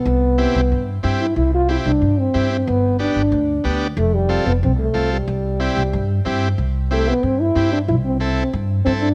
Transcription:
<<
  \new Staff \with { instrumentName = "Transistor combo organ" } { \time 4/4 \key c \major \tempo 4 = 184 r4 <c' e' g'>8 r4. <c' e' g'>8 r8 | r4 <c' e' g'>8 r4. <c' e' g'>8 r8 | r4 <b d' g'>8 r4. <b d' g'>8 r8 | r4 <c' f' a'>8 r4. <c' f' a'>8 r8 |
r4 <c' e' g'>8 r4. <c' e' g'>8 r8 | r4 <c' e' g'>8 r4. <c' e' g'>8 r8 | r4 <c' e' a'>8 r4. <c' e' a'>8 r8 | }
  \new Staff \with { instrumentName = "French horn" } { \time 4/4 \key c \major b2~ b8 r4 e'8 | e'8 f'8 e'8 d'4 c'4 c'8 | b4 d'2~ d'8 r8 | a8 g4 b8 c'8 a4 g8~ |
g2.~ g8 r8 | r4 a8 b8 c'8 e'4 d'8 | e'8 c'8 c'4 r4 c'8 d'8 | }
  \new Staff \with { instrumentName = "Upright bass" } { \clef bass \time 4/4 \key c \major c,4. c,8 g,4 g,4 | c,4. c,8 g,4 g,4 | g,,4. g,,8 d,4 d,4 | f,,4. f,,8 c,4 c,4 |
c,4. c,8 g,4 g,4 | c,2 g,4 g,4 | c,2 g,4 g,4 | }
>>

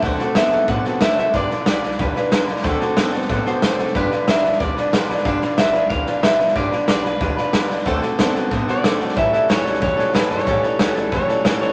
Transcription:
<<
  \new Staff \with { instrumentName = "Clean electric guitar" } { \time 4/4 \key g \major \tempo 4 = 184 fis''4 e''4 fis''4 e''8 e''8 | d''4 d''4 b'8 b'4 r8 | r2 r8 c''4. | b'4 e''4 d''2 |
f''4 e''4 f''4 e''4 | d''4 d''8 b'4 b'4 r8 | r2 r8 d''4. | e''8 e''8 cis''4 cis''4 b'8 cis''8~ |
cis''4 a'4 cis''4. cis''8 | }
  \new Staff \with { instrumentName = "Steel-string acoustic guitar" } { \time 4/4 \key g \major <d a c' fis' a'>8 <c' fis' a'>8 <d a c' fis' a'>8 <c' fis' a'>8 <a c' fis' a'>8 <c' fis' a'>8 <d a c' fis' a'>8 <c' fis' a'>8 | <g d' f' b'>8 <d' f' b'>8 <g d' f' b'>8 <d' f' b'>8 <g d' f' b'>8 <d' f' b'>8 <g d' f' b'>8 <d' f' b'>8 | <d a c' fis' a'>8 <c' fis' a'>8 <d a c' fis' a'>8 <c' fis' a'>8 <a c' fis' a'>8 <c' fis' a'>8 <d a c' fis' a'>8 <c' fis' a'>8 | <g d' f' b'>8 <d' f' b'>8 <g d' f' b'>8 <d' f' b'>8 <g d' f' b'>8 <d' f' b'>8 <g d' f' b'>8 <d' f' b'>8 |
<g d' f' b'>8 <d' f' b'>8 <g d' f' b'>8 <d' f' b'>8 <g d' f' b'>8 <d' f' b'>8 <g d' f' b'>8 <d' f' b'>8 | <g d' f' b'>8 <d' f' b'>8 <g d' f' b'>8 <d' f' b'>8 <g d' f' b'>8 <d' f' b'>8 <g d' f' b'>8 <d' f' b'>8 | <d a c' fis' a'>8 <c' fis' a'>8 <d a c' fis' a'>8 <c' fis' a'>8 <a c' fis' a'>8 <c' fis' a'>8 <d a c' fis' a'>8 <c' fis' a'>8 | <a, e g cis' e' a'>8 <g cis' e' a'>8 <a, e g cis' e' a'>8 <g cis' e' a'>8 <g cis' e' a'>8 <g cis' e' a'>8 <a, e g cis' e' a'>8 <g cis' e' a'>8 |
<a, e g cis' e' a'>8 <g cis' e' a'>8 <a, e g cis' e' a'>8 <g cis' e' a'>8 <g cis' e' a'>8 <g cis' e' a'>8 <a, e g cis' e' a'>8 <g cis' e' a'>8 | }
  \new Staff \with { instrumentName = "Clean electric guitar" } { \clef bass \time 4/4 \key g \major <d a>8 <d a>8 <d b>8 <d b>8 <d b>8 <d b>8 <d a>8 <d a>8 | <g, d>8 <g, d>8 <g, e>8 <g, e>8 <g, e>8 <g, e>8 <g, d>8 <g, d>8 | <d a>8 <d a>8 <d b>8 <d b>8 <d b>8 <d b>8 <d a>8 <d a>8 | <g, d>8 <g, d>8 <g, e>8 <g, e>8 <g, e>8 <g, e>8 <g, d>8 <g, d>8 |
<g, d>8 <g, d>8 <g, e>8 <g, e>8 <g, e>8 <g, e>8 <g, d>8 <g, d>8 | <g, d>8 <g, d>8 <g, e>8 <g, e>8 <g, e>8 <g, e>8 <g, d>8 <g, d>8 | <d a>8 <d a>8 <d b>8 <d b>8 <d b>8 <d b>8 <d a>8 <d a>8 | <a, e>8 <a, e>8 <a, fis>8 <a, fis>8 <a, fis>8 <a, fis>8 <a, e>8 <a, e>8 |
<a, e>8 <a, e>8 <a, fis>8 <a, fis>8 <a, fis>8 <a, fis>8 <a, e>8 <a, e>8 | }
  \new Staff \with { instrumentName = "Upright bass" } { \clef bass \time 4/4 \key g \major d,8 r8 fis,8 fis,8 a,8 r8 b,8 c8 | g,,8 r8 b,,8 b,,8 d,8 r8 e,8 f,8 | d,8 r8 fis,8 fis,8 a,8 r8 b,8 c8 | g,,8 r8 b,,8 b,,8 d,8 r8 e,8 f,8 |
g,,8 r8 b,,8 b,,8 d,8 r8 e,8 f,8 | g,,8 r8 b,,8 b,,8 d,8 r8 e,8 cis,8 | d,8 r8 fis,8 fis,8 a,8 r8 b,8 c8 | a,,8 r8 cis,8 cis,8 e,8 r8 fis,8 g,8 |
a,,8 r8 cis,8 cis,8 e,8 r8 fis,8 fis,,8 | }
  \new DrumStaff \with { instrumentName = "Drums" } \drummode { \time 4/4 <bd sn>8 sn8 <hhp sn>8 sn8 <bd sn>8 sn8 <hhp sn>8 sn8 | <bd sn>8 sn8 <hhp sn>8 sn16 sn16 <bd sn>8 sn8 <hhp sn>8 sn16 sn16 | <bd sn>8 sn8 <hhp sn>8 sn16 sn16 <bd sn>8 sn8 <hhp sn>8 sn16 sn16 | <bd sn>8 sn8 <hhp sn>8 sn16 sn16 <bd sn>8 sn8 <hhp sn>8 sn16 sn16 |
<bd sn>8 sn8 <hhp sn>8 sn8 <bd sn>8 sn8 <hhp sn>8 sn16 sn16 | <bd sn>8 sn8 <hhp sn>8 sn8 <bd sn>8 sn8 <hhp sn>8 sn16 sn16 | <bd sn>8 sn8 <hhp sn>8 sn8 <bd sn>8 sn8 <hhp sn>8 sn16 sn16 | <bd sn>8 sn8 <hhp sn>8 sn16 sn16 <bd sn>8 sn8 <hhp sn>8 sn16 sn16 |
<bd sn>8 sn8 <hhp sn>8 sn8 <bd sn>8 sn8 <hhp sn>8 sn8 | }
>>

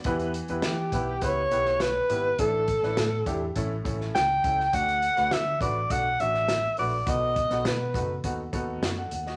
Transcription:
<<
  \new Staff \with { instrumentName = "Alto saxophone" } { \time 4/4 \key d \major \tempo 4 = 103 r4 g'4 cis''4 b'4 | a'2 r4 g''4 | fis''4 e''8 d''8 fis''8 e''4 d''8 | dis''4 b'4 r2 | }
  \new Staff \with { instrumentName = "Upright piano" } { \time 4/4 \key d \major <b e' g' b'>8 r16 <b e' g' b'>8 r16 <b e' g' b'>16 r16 <b e' g' b'>16 r16 <b e' g' b'>8 r8 <b e' g' b'>16 r16 | <a d' e' a'>8 r16 <a d' e' b'>8 r16 <a d' e' g'>16 r16 <a cis' e' a'>16 r16 <a cis' e' a'>8 r8 <a cis' e' a'>16 r16 | <a d' fis' a'>8 r16 <a d' fis' b'>8 r16 <a d' fis' b'>16 r16 <a d' fis' a'>16 r16 <a d' fis' a'>8 r8 <a d' fis' b'>16 r16 | <b dis' fis' a'>8 r16 <b dis' fis' a'>8 r16 <b dis' fis' a'>16 r16 <b dis' fis' a'>16 r16 <b dis' fis' a'>8 <fis' dis''>16 <a' fis''>16 <a' fis''>16 <fis' dis''>16 | }
  \new Staff \with { instrumentName = "Upright piano" } { \clef bass \time 4/4 \key d \major e4. r2 r8 | a,4. r8 a,4. r8 | d4. r2 r8 | b,4. r2 r8 | }
  \new Staff \with { instrumentName = "Fingered electric bass" } { \clef bass \time 4/4 \key d \major e,8. e,16 e8 b,,8 cis,8 b,,4 gis,,8 | a,,8. a,,16 a,8 e,8 a,,8 a,,8 cis,8 cis,8 | d,8. d,16 d8 a,,8 b,,8 a,,4 bes,,8 | b,,8. b,,16 b,8 fis,,8 dis,8 dis,8 fis,8 dis,8 | }
  \new DrumStaff \with { instrumentName = "Drums" } \drummode { \time 4/4 <hh bd>16 hh16 hh16 hh16 <hh sn>8 <hh bd>8 <hh bd>8 hh16 sn16 <hh sn>8 hh8 | <hh bd>8 <hh bd>16 sn16 <hh sn>8 <hh bd>8 <hh bd>8 <hh bd>16 sn16 <hh sn>8 <hh bd>16 sn16 | <hh bd>16 hh16 hh16 <hh sn>16 <hh sn>8 <hh bd>8 <hh bd>8 hh16 sn16 <hh sn>8 hho8 | <hh bd>8 <hh bd>16 <hh sn>16 <hh sn>8 <hh bd>8 <hh bd>8 <hh bd>8 <hh sn>8 hh16 sn16 | }
>>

